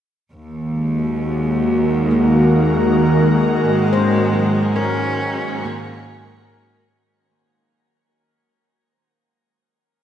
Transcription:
0.33 cello section D#2, analog synth pad D#3, synth drone D#3 A#3
0.65 analog synth pad G#3
0.85 analog synth pad F#4
1.57 analog synth pad A#4
2.11 handpan A#3
3.66 cello section G#2, cello G#3, synth texture G#5
3.93 handpan C5
3.97 handpan C#4
4.33 handpan F#3
4.76 cello C#4, handpan A#4
5.64 handpan A#3

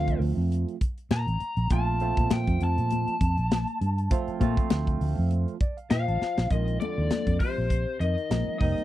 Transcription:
Already playing: fingered electric bass D2, tine electric piano F3 A3 C4 F4, lead electric guitar F5
0.08 kick, closed hi-hat
0.20 fingered electric bass D2, open hi-hat
0.37 fingered electric bass F2
0.51 closed hi-hat, muted conga
0.68 closed hi-hat
0.81 kick, closed hi-hat
0.98 closed hi-hat
1.11 fingered electric bass A#2, lead electric guitar A#5, snare, closed hi-hat, high conga
1.27 fingered electric bass A1, closed hi-hat
1.40 closed hi-hat, muted conga
1.57 fingered electric bass A#1, closed hi-hat
1.70 fingered electric bass A#1, tine electric piano F3 A3 C4 F4, lead electric guitar A5, kick, closed hi-hat, muted conga
2.00 tine electric piano F3 A3 C4 F4, closed hi-hat, muted conga
2.17 fingered electric bass A#2, kick, closed hi-hat
2.30 fingered electric bass A#2, lead electric guitar G5, snare, closed hi-hat, high conga
2.47 fingered electric bass F2, kick, closed hi-hat
2.61 fingered electric bass F2, lead electric guitar A5, closed hi-hat
2.78 fingered electric bass A#2, closed hi-hat
2.90 closed hi-hat, muted conga, high conga
3.07 muted fingered electric bass stroke, closed hi-hat
3.21 fingered electric bass F2, kick, closed hi-hat
3.37 fingered electric bass A#1, closed hi-hat
3.51 snare, closed hi-hat, high conga
3.67 closed hi-hat
3.81 fingered electric bass G2, closed hi-hat, muted conga
3.98 closed hi-hat
4.10 tine electric piano F3 A3 C4 F4, kick, closed hi-hat, muted conga
4.28 muted fingered electric bass stroke, closed hi-hat
4.40 fingered electric bass A#2, tine electric piano F3 A3 C4 F4, kick, closed hi-hat, muted conga, high conga
4.57 kick, closed hi-hat
4.70 fingered electric bass D2, snare, closed hi-hat, high conga
4.87 kick, closed hi-hat
5.01 fingered electric bass D2, open hi-hat
5.18 fingered electric bass F2
5.31 closed hi-hat, muted conga
5.48 closed hi-hat
5.60 tine electric piano D5, kick, closed hi-hat
5.77 tine electric piano F5, closed hi-hat
5.90 fingered electric bass A#2, trombone F3, lead electric guitar F5, tine electric piano G5, snare, closed hi-hat, high conga
6.08 fingered electric bass A1, tine electric piano A5, closed hi-hat
6.21 snare, muted conga
6.38 fingered electric bass A#1, snare
6.50 fingered electric bass A#1, trombone D#3, tine electric piano F3 G#3 C4 F4, lead electric guitar D#5, kick, closed hi-hat, muted conga
6.68 closed hi-hat
6.80 trombone D3, lead electric guitar D5, closed hi-hat, muted conga, high conga
6.98 fingered electric bass D#2
7.10 muted fingered electric bass stroke, snare, closed hi-hat, high conga
7.27 fingered electric bass F2, kick, closed hi-hat
7.40 trombone C3, lead electric guitar C5, kick, open hi-hat, muted conga
7.58 fingered electric bass A#1
7.70 kick, closed hi-hat, muted conga
8.00 fingered electric bass F2, trombone D#3, lead electric guitar D#5, closed hi-hat
8.18 closed hi-hat
8.30 fingered electric bass A#1, tine electric piano F3 G#3 C4 D#4, snare, closed hi-hat, high conga
8.48 muted fingered electric bass stroke
8.59 fingered electric bass F1, trombone D#3, tine electric piano G3 A#3 C4 D#4, lead electric guitar D#5, kick, open hi-hat
8.78 muted fingered electric bass stroke, closed hi-hat

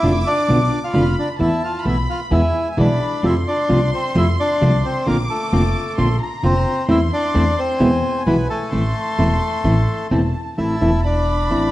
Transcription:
Already playing: bandoneon E4 E5, violin section D6
0.03 upright bass F1, nylon-string guitar B2 D3 B3 D4 F4
0.27 bandoneon D4 D5
0.48 upright bass B1, nylon-string guitar B2 D3 B3 D4 F4
0.84 bandoneon F4 F5
0.93 upright bass F1, nylon-string guitar B2 D3 B3 D4 F4, violin section B5
1.19 bandoneon D4 D5
1.38 upright bass E2, nylon-string guitar E3 A3 B3 E4, bandoneon E4 E5, violin section A5
1.64 bandoneon F4 F5
1.85 upright bass B1, nylon-string guitar E3 A3 B3 E4, bandoneon E4 E5, violin section B5
2.10 bandoneon F4 F5
2.31 upright bass E2, nylon-string guitar B2 E3 G#3 B3 E4, bandoneon E4 E5, violin section G#5
2.72 bandoneon E5
2.77 upright bass B1, nylon-string guitar B2 E3 G#3 B3 E4, bandoneon D4 D5, violin section B5
3.23 upright bass F2, nylon-string guitar C3 F3 A3 C4 F4, bandoneon E4 E5, violin section C6
3.48 bandoneon D4 D5
3.69 upright bass C2, nylon-string guitar C3 F3 A3 C4 F4
3.94 bandoneon C4 C5
4.15 upright bass F2, nylon-string guitar C3 F3 A3 C4 F4, bandoneon E4 E5
4.40 bandoneon D4 D5
4.61 upright bass C2, nylon-string guitar C3 F3 A3 C4 F4
4.85 bandoneon C4 C5
5.06 upright bass A#1, nylon-string guitar D3 A#3 C4 F4, bandoneon A#3 A#4, violin section D6
5.30 bandoneon A3 A4
5.53 upright bass F1, nylon-string guitar D3 A#3 C4 F4
5.98 upright bass A#1, nylon-string guitar D3 A#3 C4 F4, violin section C6
6.20 violin section A#5
6.43 upright bass F1, nylon-string guitar D3 A#3 C4 F4, bandoneon C4 C5
6.88 upright bass E2, nylon-string guitar E3 A3 C4 E4, bandoneon E4 E5, violin section C6
7.13 bandoneon D4 D5
7.34 upright bass E2, nylon-string guitar E3 A3 C4 E4
7.59 bandoneon C4 C5
7.80 upright bass E2, nylon-string guitar B2 E3 G#3 B3 E4, violin section G#5
8.26 upright bass B1, nylon-string guitar B2 E3 G#3 B3 E4, bandoneon B3 B4
8.50 bandoneon A3 A4
8.72 upright bass A1, nylon-string guitar E3 A3 C4 E4, violin section C6
9.18 upright bass E1, nylon-string guitar E3 A3 C4 E4
9.64 upright bass A1, nylon-string guitar E3 A3 C4 E4
10.11 upright bass E1, nylon-string guitar E3 A3 C4 E4, violin section A5
10.57 upright bass A1, nylon-string guitar E3 A3 C4 E4, bandoneon E4 E5, violin section A5
10.81 upright bass E1, nylon-string guitar E3 A3 C4 E4
11.03 bandoneon D4 D5, violin section B5
11.50 upright bass A1, nylon-string guitar E3 A3 C4 E4

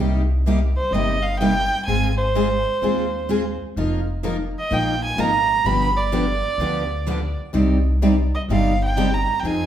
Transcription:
Already playing: upright bass C2
0.00 steel-string acoustic guitar C3 G3 A#3 D#4 G4
0.47 steel-string acoustic guitar C3 G3 A#3 D#4 G4
0.77 violin C5
0.91 upright bass G1, steel-string acoustic guitar C3 G3 A#3 D#4, violin D#5
0.95 steel-string acoustic guitar G4
1.23 violin F5
1.39 steel-string acoustic guitar C3 G3 A#3 D#4 G4, violin G5
1.86 upright bass G#1, steel-string acoustic guitar G#3 C4 F4 G#4, violin G#5
2.17 violin C5
2.35 steel-string acoustic guitar G#3 C4 F4 G#4
2.82 upright bass D#2, steel-string acoustic guitar G#3 C4 F4 G#4
3.29 steel-string acoustic guitar G#3 C4 F4 G#4
3.76 upright bass F1, steel-string acoustic guitar F3 A#3 D#4 F4 A#4
4.24 steel-string acoustic guitar F3 A#3 D#4 F4 A#4
4.59 violin D#5
4.71 upright bass A#1, steel-string acoustic guitar F3 A#3 D#4 F4 A#4, violin G5
5.04 violin G#5
5.16 upright bass G#1, steel-string acoustic guitar F3 A#3 D#4 F4 A#4
5.20 violin A#5
5.65 upright bass G1, steel-string acoustic guitar D3 F3 B3 D4 G4, violin B5
5.97 violin D5
6.12 steel-string acoustic guitar D3 F3 B3 D4 G4
6.58 upright bass D2, steel-string acoustic guitar D3 F3 B3 D4 G4
7.07 steel-string acoustic guitar D3 F3 B3 D4 G4
7.53 upright bass C2, steel-string acoustic guitar C3 G3 C4 D#4 G4 D5
8.02 steel-string acoustic guitar C3 G3 C4 D#4 G4 D5
8.35 violin D#5
8.49 upright bass G1, steel-string acoustic guitar C3 G3 C4 D#4 G4 D5, violin F5
8.84 violin G5
8.97 steel-string acoustic guitar C3 G3 C4 D#4 G4 D5
9.14 violin A#5
9.40 upright bass F2, violin G5
9.45 steel-string acoustic guitar F3 C4 D#4 G#4, violin G#5

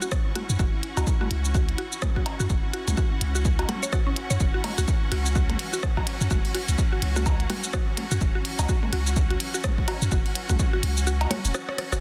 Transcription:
Already playing: synth texture E3 E4, string section C#4 F#4 F#5 C#6
0.02 synth arpeggio sound F#4, shaker
0.12 kick, cross-stick, shaker
0.35 synth arpeggio sound F#4, closed hi-hat, percussion blips
0.50 sub bass F#2, shaker
0.59 sub bass F#1, synth arpeggio sound F#4, kick, shaker
0.83 closed hi-hat
0.97 sub bass C#2, synth arpeggio sound F#4, closed hi-hat, cowbell, shaker
1.07 kick, shaker
1.21 synth arpeggio sound F#4, percussion blips
1.31 sub bass C#2, closed hi-hat
1.45 shaker
1.55 synth arpeggio sound F#4, kick, shaker
1.69 closed hi-hat
1.78 synth arpeggio sound F#4, closed hi-hat
1.92 shaker
2.02 kick, cross-stick, percussion blips, shaker
2.16 synth arpeggio sound F#4, kick
2.26 closed hi-hat, cowbell
2.40 sub bass F#2, synth arpeggio sound F#4, shaker
2.50 sub bass F#1, kick, shaker
2.73 synth arpeggio sound F#4, closed hi-hat
2.88 sub bass C#2, closed hi-hat, percussion blips, shaker
2.97 synth arpeggio sound F#4, kick, shaker
3.21 sub bass C#2, closed hi-hat
3.35 synth arpeggio sound F#4, shaker
3.45 kick, shaker
3.59 synth arpeggio sound F#4, closed hi-hat, cowbell
3.69 synth arpeggio sound F#5, closed hi-hat, percussion blips
3.83 synth arpeggio sound C#5, shaker
3.92 synth arpeggio sound F#4, kick, cross-stick, shaker
4.07 synth arpeggio sound C#4
4.16 closed hi-hat
4.30 sub bass F#2, synth arpeggio sound C#5, shaker
4.40 sub bass F#1, synth texture F#3, kick, shaker
4.54 synth arpeggio sound F#4
4.64 closed hi-hat, ride, cowbell, percussion blips
4.78 sub bass C#2, synth arpeggio sound F#4, closed hi-hat, shaker
4.88 kick, shaker
5.12 sub bass C#2, synth arpeggio sound F#4, closed hi-hat, ride
5.26 shaker
5.35 synth arpeggio sound F#4, kick, shaker
5.50 closed hi-hat, percussion blips
5.59 closed hi-hat, ride
5.73 synth arpeggio sound F#4, shaker
5.83 kick, cross-stick, shaker
5.97 synth arpeggio sound F#4, kick, cowbell
6.07 closed hi-hat, ride
6.21 sub bass F#2, shaker
6.31 sub bass F#1, synth arpeggio sound F#4, kick, percussion blips, shaker
6.45 ride
6.54 synth arpeggio sound F#4, closed hi-hat, ride
6.69 sub bass C#2, closed hi-hat, shaker
6.78 kick, shaker
6.92 synth arpeggio sound F#4
7.02 sub bass C#2, closed hi-hat, ride
7.16 synth arpeggio sound F#4, percussion blips, shaker
7.26 kick, cowbell, shaker
7.40 closed hi-hat
7.50 synth arpeggio sound F#4, closed hi-hat, ride, percussion blips
7.64 shaker
7.73 synth arpeggio sound F#4, kick, cross-stick, shaker
7.97 closed hi-hat, ride, percussion blips
8.11 sub bass F#2, synth arpeggio sound F#4, shaker
8.21 sub bass F#1, kick, shaker
8.35 synth arpeggio sound F#4
8.45 closed hi-hat, ride
8.59 sub bass C#2, closed hi-hat, cowbell, shaker
8.69 synth arpeggio sound F#4, kick, shaker
8.83 percussion blips
8.93 sub bass C#2, synth arpeggio sound F#4, closed hi-hat, ride
9.07 shaker
9.16 kick, shaker
9.30 synth arpeggio sound F#4, closed hi-hat
9.40 closed hi-hat, ride
9.54 synth arpeggio sound F#4, shaker
9.64 kick, cross-stick, percussion blips, shaker
9.78 kick
9.88 synth arpeggio sound F#4, closed hi-hat, ride, cowbell
10.02 sub bass F#2, shaker
10.12 sub bass F#1, synth arpeggio sound F#4, kick, shaker
10.26 ride
10.35 closed hi-hat, ride
10.50 sub bass C#2, synth arpeggio sound F#4, kick, closed hi-hat, percussion blips, shaker
10.59 kick, shaker
10.73 synth arpeggio sound F#4
10.83 sub bass C#2, closed hi-hat, ride
10.97 shaker
11.07 synth arpeggio sound F#4, shaker
11.21 closed hi-hat, cowbell
11.31 synth arpeggio sound C#5, closed hi-hat, ride, percussion blips
11.45 sub bass E1, ride, shaker
11.54 synth arpeggio sound F#4, cross-stick, shaker
11.69 synth arpeggio sound C#5, cross-stick
11.78 cross-stick, closed hi-hat, ride
11.92 sub bass F#1, synth arpeggio sound F#4, cross-stick, shaker

